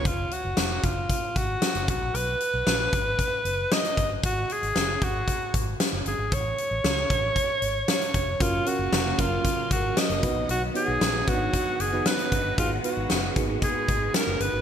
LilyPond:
<<
  \new Staff \with { instrumentName = "Alto saxophone" } { \time 4/4 \key b \lydian \tempo 4 = 115 f'8 fis'4 f'4 fis'4 fis'8 | b'2. dis''4 | fis'8 gis'4 fis'4 r4 gis'8 | cis''2. cis''4 |
eis'8 fis'4 eis'4 fis'8 dis''4 | fis'8 gis'4 fis'4 gis'8 b'4 | eis'8 fis'4 r8 gis'4 ais'8 b'8 | }
  \new Staff \with { instrumentName = "FM electric piano" } { \time 4/4 \key b \lydian r1 | r1 | r1 | r1 |
<cis' eis' fis' ais'>8 <cis' fis' ais' eis''>8. r16 <fis cis' eis' ais'>4. r8 <b dis' fis' b'>8~ | <b dis' fis' b'>16 r16 <b dis' fis' cis''>8. r16 <b d' dis' fis' b'>4 r16 <b dis' fis' b'>4 r16 | <b dis' fis' gis'>8 <b dis' fis' b'>8. r16 <ais b dis' fis' gis'>4. r4 | }
  \new Staff \with { instrumentName = "String machine" } { \time 4/4 \key b \lydian << { r1 | r1 | r1 | r1 |
<cis ais eis''>2.~ <cis ais eis''>8 <dis b fis'>8~ | <dis b fis'>1~ | <dis b fis'>1 | } \\ { r1 | r1 | r1 | r1 |
fis1~ | fis1 | gis1 | } >> }
  \new Staff \with { instrumentName = "Fingered electric bass" } { \clef bass \time 4/4 \key b \lydian fis,,8 r16 fis,,16 f,,8 fis,,8 r8 aes,,8 r16 fis,,16 b,,16 ais,,16 | b,,8 r16 b,,16 ais,,8 gis,,8 r8 fis,,8 r8 g,,8 | gis,,8 r16 gis,,16 fis,,8 gis,,8 r8 gis,,8 r16 fis,,16 g,,16 gis,,16 | a,,8 r16 a,,16 cis,8 a,,8 r8 gis,,8 r8 eis,,8 |
fis,,8 r16 fis,,16 eis,,8 fis,,8 r8 gis,,8 r16 fis,,16 b,,16 ais,,16 | b,,8 r16 b,,16 ais,,8 gis,,8 r8 fis,,8 r8 g,,8 | gis,,8 r16 gis,,16 fis,,8 gis,,8 r8 gis,,8 r16 fis,,16 g,,16 gis,,16 | }
  \new DrumStaff \with { instrumentName = "Drums" } \drummode { \time 4/4 <hh bd>8 hh8 <hh sn>8 <hh bd>8 <hh bd>8 <hh bd>8 <hh sn>16 hh16 <hh bd>8 | hh8 hh8 <hh sn>8 <hh bd>8 <hh bd>8 hh8 <hh sn>16 hh16 <hh bd>8 | <hh bd>8 hh16 hh16 <hh sn>8 <hh bd>8 <hh bd>8 <hh bd>8 <hh sn>8 hh8 | <hh bd>8 hh8 <hh sn>8 <hh bd>8 <hh bd>8 hh8 <hh sn>16 hh16 <hh bd>8 |
<hh bd>8 hh8 <hh sn>8 <hh bd>8 <hh bd>8 <hh bd>8 <hh sn>16 hh16 <hh bd>8 | hh8 hh8 <hh sn>8 <hh bd>8 <hh bd>8 hh8 <hh sn>16 hh16 <hh bd>8 | <hh bd>8 hh8 <hh sn>8 <hh bd>8 <hh bd>8 <hh bd>8 <hh sn>8 hh8 | }
>>